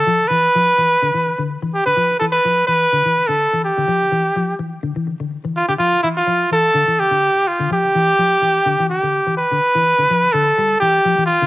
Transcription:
X:1
M:4/4
L:1/16
Q:"Swing 16ths" 1/4=126
K:Gmix
V:1 name="Trumpet"
A2 B8- B2 z2 G B- | B2 A B3 B4- B A3 G2- | G6 z8 F G | F2 E F3 A4 G4 F2 |
G8- G2 G4 B2- | B6 A4 G4 F2 |]
V:2 name="Clean electric guitar" clef=bass
F,2 E,2 F,2 E,2 D, E,2 D,2 E,2 D, | F,2 E,2 F,2 E,2 D, E,2 D,2 E,2 D, | F,2 E,2 F,2 E,2 D, E,2 D,2 E,2 D, | F,2 E,2 F,2 E,2 D, E,2 D,2 z2 D, |
F,2 E,2 F,2 E,2 D, E,2 D,2 E,2 D, | z E,2 D, F,2 D,2 G,2 E,2 F, E,2 D, |]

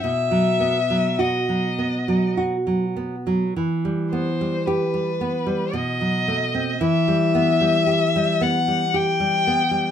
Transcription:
X:1
M:3/4
L:1/16
Q:1/4=56
K:Em
V:1 name="Violin"
e4 ^d4 z4 | z2 c2 B4 ^d4 | e6 f2 g4 |]
V:2 name="Nylon-string guitar" clef=bass
B,, F, B, F, F F, B, F, F F, B, F, | E, G, B, G, G G, B, G, B,, F, A, C | E, G, B, G, G G, B, G, G G, B, G, |]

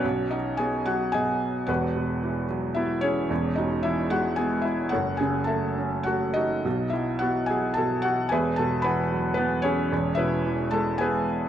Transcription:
X:1
M:3/4
L:1/8
Q:1/4=110
K:Bmix
V:1 name="Felt piano"
[CFc] [Dd] [Gg] [Ff] [Gdg]2 | [FBf]3 z [Ee] [CGc]- | [CGc] [Dd] [Ee] [Ff] [Gg] [Ee] | [FAcf] [Gg] [Aea]2 [Ff] [DFd]- |
[DFd] [Ee] [Ff] [Gg] [Aa] [Ff] | [GBeg] [Aa] [Bfb]2 [B,B] [CGc]- | [CGc] [EBe]2 [Aa] [GBg]2 |]
V:2 name="Felt piano" clef=bass
[B,,,B,,] F, B, F, B,,2 | [E,,,E,,] B,, E, F, B,2 | [E,,,E,,] B,, E, G, B,2 | [F,,,F,,] C, A, C A,2 |
[B,,,B,,] F, B, F, B,,2 | [E,,,E,,] B,, E, F, E,2 | [E,,,E,,] B,, E, G, B,2 |]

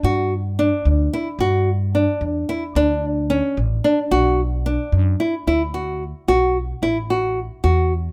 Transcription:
X:1
M:5/8
L:1/8
Q:1/4=111
K:Bm
V:1 name="Nylon-string guitar"
F2 D2 E | F2 D2 E | D2 C2 D | F2 D2 E |
E F2 F2 | E F2 F2 |]
V:2 name="Upright bass" clef=bass
G,,3 D,, z | G,,3 E,, z | D,,3 A,,, z | B,,,3 F,, z |
D,,3 B,,,2 | A,,,3 E,,2 |]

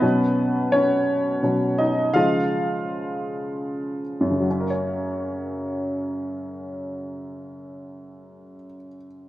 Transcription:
X:1
M:6/8
L:1/8
Q:3/8=49
K:F#
V:1 name="Upright piano"
[B,B]2 [Cc]2 z [Dd] | [Ee]4- [Ee] z | z6 | z6 |]
V:2 name="Upright piano" clef=bass
[B,,F,C]4 [B,,F,C] z | [C,E,G,]6 | [F,,C,F,CAc]6- | [F,,C,F,CAc]6 |]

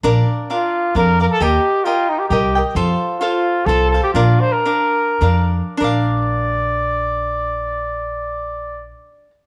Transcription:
X:1
M:3/4
L:1/16
Q:"Swing" 1/4=122
K:Bb
V:1 name="Cavaquinho"
[DBdf]4 [DBdf]4 [DBdf]2 [Bdf]2 | [GBeg]4 [GBeg]4 [GBeg]2 [Beg]2 | [FAcf]4 [FAcf]4 [FAcf]2 [Acf]2 | [DBdf]4 [DBdf]4 [DBdf]4 |
[DBdf]12- | [DBdf]12 |]
V:2 name="Trumpet"
z4 F4 B2 B A | G4 F2 E G G3 z | z4 F4 A2 A G | F2 c B6- B z2 |
d12- | d12 |]
V:3 name="Upright bass" clef=bass
B,,,2 z6 F,,4 | E,,2 z6 C,,4 | F,,2 z6 C,,4 | B,,,2 z6 F,,4 |
B,,,12- | B,,,12 |]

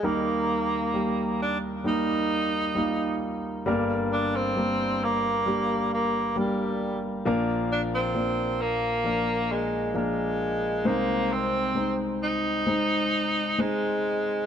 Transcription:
X:1
M:4/4
L:1/16
Q:1/4=66
K:Eb
V:1 name="Grand piano"
[G,B,EB]4 [G,B,G]4 [G,B,EB]4 [G,B,EF]4 | [G,B,DB]4 [G,B,DB]4 [G,B,DG]4 [G,B,DB]4 | [F,B,DB]4 [F,B,DB]4 [F,B,DB]4 [F,B,DB]4 | [A,CEc]4 [A,CEc]4 [A,CEc]4 [A,CEc]4 |]
V:2 name="Grand piano" clef=bass
[E,,E,]16 | [G,,,G,,]16 | [B,,,B,,]16 | [C,,C,]16 |]
V:3 name="Tenor saxophone"
B,6 D2 E6 z2 | z2 D C3 B,4 B,2 G,3 z | z2 D C3 B,4 A,2 A,4 | B,2 C3 z E6 A,4 |]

